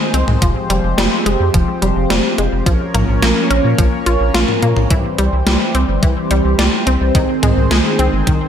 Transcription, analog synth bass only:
0.14 C2
0.28 C2
0.42 F1
0.70 F1
0.84 F1
0.98 F1
1.26 F1
1.40 F2
1.54 F1
1.82 F1
1.96 F1
2.10 F1
2.38 F1
2.52 F1
2.66 A#1
2.94 A#1
3.08 A#1
3.22 A#1
3.50 A#1
3.64 A#2
3.79 A#1
4.07 A#1
4.21 A#1
4.35 A#1
4.63 A#2
4.77 A#1
4.91 C2
5.19 C2
5.33 C2
5.47 C2
5.75 C2
5.89 G1
6.03 C2
6.31 C2
6.45 C2
6.59 C2
6.87 C2
7.01 C2
7.15 C2
7.43 C2
7.57 C2
7.71 C2
7.99 C2
8.13 G1
8.27 C2

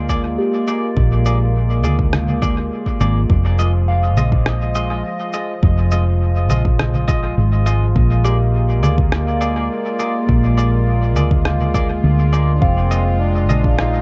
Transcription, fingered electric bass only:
Already playing: D2
0.97 A#1
1.84 D2
3.01 G#1
3.30 F1
4.17 A#1
5.63 F1
6.50 A#1
7.38 G#1
7.96 A#1
8.83 D2
10.29 A#1
11.17 D2
12.04 D2
12.62 F1
13.49 A#1

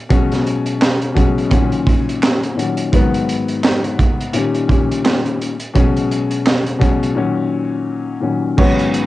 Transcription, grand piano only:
0.09 B2 F#3 G#3 C#4
1.14 B2 F#3 G#3 C#4
1.50 A#2 D#3 F#3 C#4
2.56 A#2 D#3 F#3 C#4
2.92 G#2 D#3 F#3 B3
4.33 A#2 D#3 G3 C#4
4.68 A#2 D#3 G3 C#4
5.74 B2 F#3 G#3 C#4
6.79 B2 F#3 G#3 C#4
7.15 A#2 D#3 F#3 C#4
8.20 A#2 D#3 F#3 C#4
8.57 G#2 D#3 F#3 B3

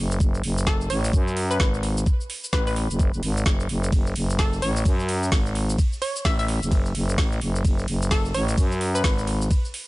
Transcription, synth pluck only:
0.67 A4
0.90 C#5
1.51 B4
2.53 B4
2.67 B4
4.39 A4
4.62 C#5
6.02 C#5
6.25 E5
6.39 E5
8.11 A4
8.35 C#5
8.95 B4

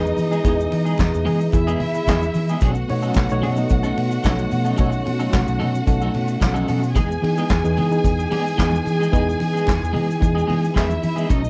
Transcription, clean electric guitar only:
0.03 muted clean electric guitar stroke
0.16 muted clean electric guitar stroke
0.31 G#3 B3 D#4 G#4
0.44 G#3 B3 D#4 G#4
0.58 muted clean electric guitar stroke
0.71 muted clean electric guitar stroke
0.85 G#3 B3 D#4 G#4
1.12 muted clean electric guitar stroke
1.25 G#3 B3 D#4 G#4
1.41 muted clean electric guitar stroke
1.53 muted clean electric guitar stroke
1.67 G#3 B3 D#4 G#4
1.81 muted clean electric guitar stroke
1.95 muted clean electric guitar stroke
2.08 G#3 B3 D#4 G#4
2.23 muted clean electric guitar stroke
2.36 muted clean electric guitar stroke
2.50 G#3 B3 D#4 G#4
2.62 F#3 C#4 D#4 A4
2.76 muted clean electric guitar stroke
2.88 muted clean electric guitar stroke
3.03 F#3 C#4 D#4 A4
3.30 muted clean electric guitar stroke
3.42 F#3 C#4 D#4 A4
3.57 muted clean electric guitar stroke
3.70 muted clean electric guitar stroke
3.83 F#3 C#4 D#4 A4
3.96 muted clean electric guitar stroke
4.11 muted clean electric guitar stroke
4.23 F#3 C#4 D#4 A4
4.38 muted clean electric guitar stroke
4.50 muted clean electric guitar stroke
4.65 F#3 C#4 D#4 A4
4.76 F#3 C#4 D#4 A4
4.92 muted clean electric guitar stroke
5.05 muted clean electric guitar stroke
5.19 F#3 C#4 D#4 A4
5.47 muted clean electric guitar stroke
5.59 F#3 C#4 D#4 A4
5.74 muted clean electric guitar stroke
5.88 muted clean electric guitar stroke
6.02 F#3 C#4 D#4 A4
6.14 muted clean electric guitar stroke
6.28 muted clean electric guitar stroke
6.40 muted clean electric guitar stroke
6.54 F#3 C#4 D#4 A4
6.68 F#3 C#4 D#4 A4
6.83 muted clean electric guitar stroke
6.95 G#3 B3 D#4 G#4
7.10 muted clean electric guitar stroke
7.23 muted clean electric guitar stroke
7.38 G#3 B3 D#4 G#4
7.65 muted clean electric guitar stroke
7.77 G#3 B3 D#4 G#4
7.92 muted clean electric guitar stroke
8.05 muted clean electric guitar stroke
8.19 muted clean electric guitar stroke
8.31 G#3 B3 D#4 G#4
8.46 muted clean electric guitar stroke
8.58 G#3 B3 D#4 G#4
8.73 muted clean electric guitar stroke
8.85 muted clean electric guitar stroke
8.99 G#3 B3 D#4 G#4
9.12 G#3 B3 D#4 G#4
9.27 muted clean electric guitar stroke
9.39 muted clean electric guitar stroke
9.53 G#3 B3 D#4 G#4
9.80 muted clean electric guitar stroke
9.93 G#3 B3 D#4 G#4
10.08 muted clean electric guitar stroke
10.20 muted clean electric guitar stroke
10.35 G#3 B3 D#4 G#4
10.47 G#3 B3 D#4 G#4
10.62 muted clean electric guitar stroke
10.74 G#3 B3 D#4 G#4
10.90 muted clean electric guitar stroke
11.02 muted clean electric guitar stroke
11.16 G#3 B3 D#4 G#4
11.29 F#3 C#4 D#4 A4
11.43 muted clean electric guitar stroke

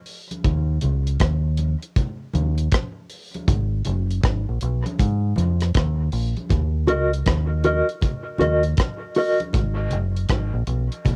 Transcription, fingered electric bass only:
0.45 D#2
0.84 C#2
1.20 D#2
2.35 D#2
3.48 G#1
3.87 F#1
4.24 G#1
4.49 A#1
4.62 B1
5.00 G#2
5.37 F2
5.75 D#2
6.13 A#1
6.51 D#2
6.89 C#2
7.27 D#2
8.40 D#2
9.54 G#1
9.92 F#1
10.30 G#1
10.54 A#1
10.67 B1
11.06 B1

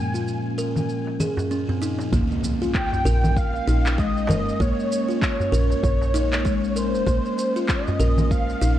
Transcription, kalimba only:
0.14 F4
0.58 A#4
1.20 G#4
1.51 C#4
1.69 C4
1.81 D#4
2.13 A#3
2.62 F4
3.05 A#4
3.67 D#4
3.98 G#3
4.29 A#4
4.60 A#3
5.09 F4
5.52 A#4
6.14 D#4
6.45 G#3
6.76 A#4
7.07 A#3
7.56 F4
8.00 A#4
8.62 D#4

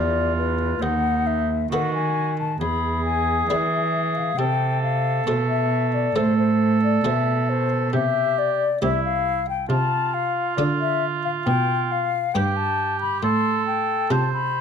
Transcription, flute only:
Already playing: D5
0.37 B4
0.82 F#5
1.27 E5
1.72 F#5
1.94 G#5
2.39 A5
2.61 B5
3.05 G#5
3.49 D5
3.72 E5
4.16 F5
4.38 G5
4.83 F5
5.49 E5
5.94 D5
6.16 C5
6.38 C5
6.84 D5
7.06 E5
7.49 C5
7.93 E5
8.39 D5
8.83 E5
9.04 F5
9.49 G5
9.70 A5
10.14 F5
10.57 D5
10.81 E5
11.25 F5
11.46 G5
11.92 F5
12.34 G5
12.57 A5
13.01 B5
13.22 C6
13.67 G5
14.10 A5
14.33 B5

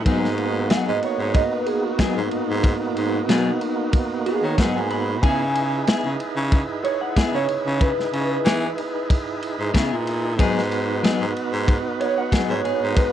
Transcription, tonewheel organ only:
0.05 A#3 B3 D#4 F#4
5.21 D#4 E4 G#4 B4
10.36 B3 D#4 F#4 B4

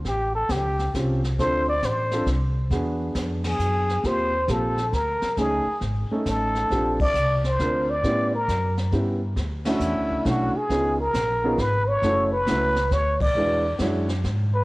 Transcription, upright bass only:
0.05 A1
0.49 C#2
0.94 C2
1.38 D2
1.82 A1
2.26 C2
2.71 E2
3.15 F2
3.59 F#2
4.04 D#2
4.48 A#1
4.92 D2
5.22 muted upright bass stroke
5.37 C#2
5.66 muted upright bass stroke
5.81 G#1
6.10 muted upright bass stroke
6.26 A1
6.70 A#1
7.14 C2
7.59 D2
8.03 A2
8.48 F#2
8.92 G2
9.36 D2
9.80 E2
9.95 D2
10.10 C#2
10.25 B1
10.69 C#2
11.14 A#1
11.58 G#1
12.02 F#1
12.46 C#2
12.90 D2
13.35 E2
13.79 F#2
14.24 G#2

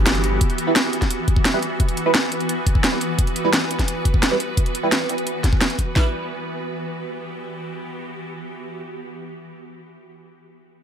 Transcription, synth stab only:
0.67 G3 E4 B4
1.54 G3 E4 B4
2.06 G3 E4 B4
2.93 G3 E4 B4
3.45 G3 E4 B4
4.31 G3 E4 B4
4.83 G3 E4 B4
5.96 G3 E4 B4

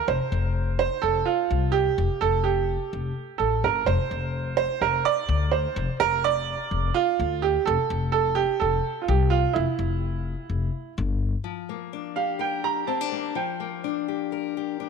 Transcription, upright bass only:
0.08 F1
0.32 F1
1.03 F1
1.51 C2
1.98 F1
2.22 F1
2.93 F1
3.40 A1
3.64 G1
3.87 F1
4.11 F1
4.81 F1
5.29 D2
5.76 F1
6.00 F1
6.71 F1
7.19 D2
7.67 F1
7.90 F1
8.61 F1
9.08 C2
9.56 F1
9.79 F1
10.50 F1
10.98 G1

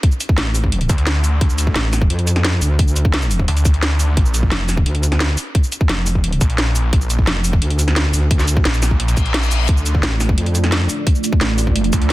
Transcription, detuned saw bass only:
0.89 D2
1.41 D2
3.48 D2
4.17 A#1
6.41 A#1
6.93 A#1
8.65 A#1
9.52 A#1
9.69 D2
11.93 D2

